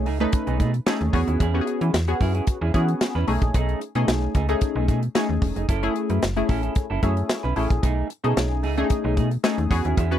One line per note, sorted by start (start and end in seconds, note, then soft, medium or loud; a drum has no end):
0.06 0.27 C#2 medium
0.06 0.20 A3 medium
0.06 0.19 D#4 medium
0.06 0.19 G#4 medium
0.06 open hi-hat medium
0.20 0.70 A3 loud
0.20 0.32 A3 soft
0.20 0.70 C#4 medium
0.20 0.32 D#4 medium
0.20 0.70 D#4 medium
0.20 0.32 G#4 medium
0.20 0.71 B4 loud
0.20 closed hi-hat soft
0.32 kick loud
0.32 closed hi-hat medium
0.47 0.61 B1 loud
0.47 0.58 A3 medium
0.47 0.59 D#4 medium
0.47 0.59 G#4 medium
0.47 closed hi-hat soft
0.59 0.80 B2 loud
0.59 0.75 A3 medium
0.59 0.73 D#4 medium
0.59 0.72 G#4 medium
0.59 kick medium
0.59 closed hi-hat medium
0.74 muted clean electric guitar stroke soft
0.74 closed hi-hat soft
0.86 1.05 A3 medium
0.86 1.13 A3 medium
0.86 1.12 C#4 medium
0.86 1.14 D#4 medium
0.86 1.00 D#4 medium
0.86 1.13 G#4 medium
0.86 0.99 G#4 medium
0.86 snare loud
0.86 closed hi-hat medium
1.01 1.11 D#2 medium
1.01 muted clean electric guitar stroke medium
1.01 closed hi-hat soft
1.13 1.24 E2 medium
1.13 1.46 B3 loud
1.13 1.46 C#4 medium
1.13 1.46 F#4 medium
1.13 1.46 G#4 loud
1.13 muted clean electric guitar stroke soft
1.13 kick medium
1.13 open hi-hat medium
1.27 1.37 D#2 medium
1.27 1.39 C#4 soft
1.27 1.39 E4 medium
1.27 1.40 G#4 medium
1.27 closed hi-hat soft
1.40 1.61 E2 loud
1.40 1.65 C#4 medium
1.40 1.65 E4 medium
1.40 1.65 G#4 loud
1.40 kick medium
1.40 closed hi-hat medium
1.54 1.94 B3 medium
1.54 1.94 C#4 medium
1.54 1.94 F#4 medium
1.54 1.61 G4 medium
1.61 1.97 G#4 loud
1.67 muted clean electric guitar stroke soft
1.67 closed hi-hat medium
1.81 1.91 E3 loud
1.81 1.93 C#4 medium
1.81 1.93 E4 medium
1.81 1.94 B4 medium
1.81 closed hi-hat soft
1.94 2.14 E2 medium
1.94 muted clean electric guitar stroke medium
1.94 snare loud
1.94 closed hi-hat medium
2.08 2.58 B3 medium
2.08 2.58 C#4 medium
2.08 2.58 F#4 medium
2.08 2.58 G#4 medium
2.08 muted clean electric guitar stroke soft
2.08 closed hi-hat soft
2.20 2.41 F#2 medium
2.20 2.35 C#4 medium
2.20 2.34 E4 medium
2.20 2.34 G#4 medium
2.20 kick medium
2.20 open hi-hat medium
2.35 2.46 C#4 soft
2.35 2.46 E4 medium
2.35 2.47 G#4 medium
2.35 closed hi-hat soft
2.47 kick loud
2.47 closed hi-hat medium
2.61 2.71 E2 loud
2.61 2.73 C#4 medium
2.61 2.73 E4 medium
2.61 2.74 G#4 medium
2.74 2.95 E3 medium
2.74 3.15 B3 medium
2.74 2.89 C#4 medium
2.74 3.15 C#4 medium
2.74 2.88 E4 medium
2.74 3.15 F#4 medium
2.74 3.15 G#4 loud
2.74 2.87 G#4 medium
2.74 kick medium
2.74 closed hi-hat medium
2.88 muted clean electric guitar stroke soft
2.88 closed hi-hat soft
3.01 muted clean electric guitar stroke soft
3.01 snare loud
3.01 closed hi-hat medium
3.15 3.25 E2 medium
3.15 3.27 C#4 medium
3.15 3.28 E4 medium
3.15 3.28 B4 medium
3.27 3.39 B1 loud
3.27 3.81 A3 loud
3.27 3.43 A3 medium
3.27 3.81 C#4 medium
3.27 3.81 D#4 medium
3.27 3.41 D#4 medium
3.27 3.82 G#4 loud
3.27 3.41 G#4 medium
3.27 open hi-hat medium
3.42 3.51 A#1 medium
3.42 muted clean electric guitar stroke soft
3.42 kick medium
3.42 closed hi-hat soft
3.54 3.75 B1 loud
3.54 3.79 A3 medium
3.54 3.80 D#4 medium
3.54 3.80 G#4 medium
3.54 kick loud
3.54 closed hi-hat medium
3.69 closed hi-hat soft
3.81 muted clean electric guitar stroke soft
3.81 closed hi-hat medium
3.95 4.05 B2 loud
3.95 4.35 A3 medium
3.95 4.07 A3 soft
3.95 4.35 C#4 medium
3.95 4.35 D#4 medium
3.95 4.07 D#4 medium
3.95 4.35 G#4 loud
3.95 4.08 A4 medium
3.95 closed hi-hat medium
4.08 4.28 B1 loud
4.08 muted clean electric guitar stroke soft
4.08 snare loud
4.08 closed hi-hat medium
4.22 muted clean electric guitar stroke soft
4.35 4.55 C#2 loud
4.35 4.49 A3 medium
4.35 4.48 D#4 medium
4.35 4.48 G#4 medium
4.35 kick medium
4.35 closed hi-hat medium
4.49 4.99 A3 loud
4.49 4.60 A3 soft
4.49 4.99 C#4 medium
4.49 4.99 D#4 medium
4.49 4.61 D#4 medium
4.49 4.61 G#4 medium
4.49 4.99 G#4 loud
4.49 closed hi-hat soft
4.61 muted clean electric guitar stroke soft
4.61 kick loud
4.61 closed hi-hat medium
4.76 4.90 B1 loud
4.76 4.87 A3 medium
4.76 4.88 D#4 medium
4.76 4.88 G#4 medium
4.88 5.09 B2 loud
4.88 5.03 A3 medium
4.88 5.02 D#4 medium
4.88 5.01 G#4 medium
4.88 kick medium
4.88 closed hi-hat medium
5.03 muted clean electric guitar stroke soft
5.03 closed hi-hat soft
5.15 5.65 A3 medium
5.15 5.34 A3 medium
5.15 5.65 C#4 medium
5.15 5.66 D#4 medium
5.15 5.29 D#4 medium
5.15 5.66 G#4 medium
5.15 5.28 G#4 medium
5.15 snare loud
5.15 closed hi-hat medium
5.29 5.39 D#2 medium
5.29 muted clean electric guitar stroke soft
5.42 5.53 E1 medium
5.42 muted clean electric guitar stroke soft
5.42 kick medium
5.42 open hi-hat medium
5.56 5.66 F1 medium
5.56 5.68 A3 soft
5.56 5.69 D#4 medium
5.56 5.69 G#4 medium
5.56 closed hi-hat soft
5.69 5.89 F#1 loud
5.69 5.93 C#4 medium
5.69 5.94 E4 medium
5.69 5.94 A4 medium
5.69 kick loud
5.69 closed hi-hat medium
5.83 6.22 A3 loud
5.83 6.22 C#4 medium
5.83 6.22 E4 medium
5.83 6.23 G#4 loud
5.83 closed hi-hat soft
5.95 muted clean electric guitar stroke soft
5.95 closed hi-hat medium
6.10 6.19 F#2 medium
6.10 6.21 C#4 soft
6.10 6.21 E4 medium
6.10 6.22 B4 medium
6.10 closed hi-hat soft
6.22 6.43 F#1 medium
6.22 muted clean electric guitar stroke soft
6.22 snare loud
6.22 closed hi-hat medium
6.36 6.86 A3 medium
6.36 6.86 C#4 medium
6.36 6.87 E4 medium
6.36 6.87 G#4 medium
6.36 muted clean electric guitar stroke soft
6.36 closed hi-hat soft
6.49 6.70 A1 medium
6.49 6.63 C#4 medium
6.49 6.62 E4 medium
6.49 6.62 A4 medium
6.49 kick medium
6.49 open hi-hat medium
6.63 6.75 C#4 soft
6.63 6.75 E4 medium
6.63 6.75 A4 medium
6.63 closed hi-hat soft
6.75 muted clean electric guitar stroke soft
6.75 kick loud
6.75 closed hi-hat loud
6.90 7.00 F#1 loud
6.90 7.01 C#4 medium
6.90 7.02 E4 medium
6.90 7.02 A4 medium
7.02 7.23 F#2 loud
7.02 7.44 A3 medium
7.02 7.18 C#4 medium
7.02 7.44 C#4 medium
7.02 7.16 E4 medium
7.02 7.44 E4 medium
7.02 7.44 G#4 loud
7.02 7.16 A4 medium
7.02 kick medium
7.02 closed hi-hat medium
7.17 muted clean electric guitar stroke soft
7.17 closed hi-hat soft
7.29 snare loud
7.29 closed hi-hat medium
7.43 7.54 B1 medium
7.43 7.55 C#4 medium
7.43 7.56 E4 medium
7.43 7.57 B4 medium
7.56 7.67 A1 medium
7.56 7.83 A3 medium
7.56 7.71 C#4 medium
7.56 7.83 C#4 medium
7.56 7.83 E4 medium
7.56 7.70 E4 medium
7.56 7.83 G#4 medium
7.56 7.69 A4 medium
7.56 open hi-hat medium
7.70 7.80 A#1 medium
7.70 muted clean electric guitar stroke soft
7.70 kick loud
7.70 closed hi-hat soft
7.83 8.04 B1 loud
7.83 8.08 A3 medium
7.83 8.08 D#4 medium
7.83 8.08 G#4 medium
7.83 kick loud
7.83 closed hi-hat medium
8.10 closed hi-hat medium
8.24 8.34 B2 loud
8.24 8.63 A3 medium
8.24 8.35 A3 medium
8.24 8.63 C#4 medium
8.24 8.63 D#4 medium
8.24 8.36 D#4 medium
8.24 8.64 G#4 loud
8.24 8.37 A4 medium
8.24 closed hi-hat medium
8.37 8.65 B1 medium
8.37 snare loud
8.37 closed hi-hat medium
8.51 muted clean electric guitar stroke soft
8.63 8.84 C#2 medium
8.63 8.77 A3 medium
8.63 8.77 D#4 medium
8.63 8.76 G#4 medium
8.63 open hi-hat medium
8.77 9.27 A3 loud
8.77 8.89 A3 medium
8.77 9.28 C#4 medium
8.77 8.84 D4 medium
8.77 8.89 D#4 medium
8.77 8.90 G#4 medium
8.77 9.28 G#4 loud
8.77 closed hi-hat soft
8.84 9.31 D#4 medium
8.90 muted clean electric guitar stroke soft
8.90 kick loud
8.90 closed hi-hat loud
9.04 9.19 B1 loud
9.04 9.16 A3 medium
9.04 9.16 D#4 medium
9.04 9.17 G#4 medium
9.17 9.38 B2 loud
9.17 9.32 A3 medium
9.17 9.31 D#4 medium
9.17 9.30 G#4 medium
9.17 kick medium
9.17 closed hi-hat medium
9.31 muted clean electric guitar stroke soft
9.31 closed hi-hat soft
9.43 9.70 A3 medium
9.43 9.63 A3 medium
9.43 9.69 C#4 medium
9.43 9.71 D#4 medium
9.43 9.58 D#4 medium
9.43 9.70 G#4 medium
9.43 9.57 G#4 loud
9.43 snare loud
9.43 closed hi-hat medium
9.58 9.68 D#2 medium
9.58 muted clean electric guitar stroke soft
9.58 closed hi-hat soft
9.70 9.81 E2 medium
9.70 10.03 B3 medium
9.70 10.03 C#4 medium
9.70 10.03 F#4 medium
9.70 10.03 G#4 loud
9.70 muted clean electric guitar stroke soft
9.70 kick medium
9.70 open hi-hat medium
9.85 9.95 D#2 medium
9.85 9.96 C#4 medium
9.85 9.97 E4 medium
9.85 9.97 G#4 medium
9.85 closed hi-hat soft
9.97 10.18 E2 loud
9.97 10.19 C#4 medium
9.97 10.19 E4 medium
9.97 10.19 G#4 medium
9.97 kick loud
9.97 closed hi-hat medium
10.11 10.19 B3 medium
10.11 10.19 C#4 medium
10.11 10.19 F#4 medium
10.11 10.19 B4 loud
10.11 closed hi-hat soft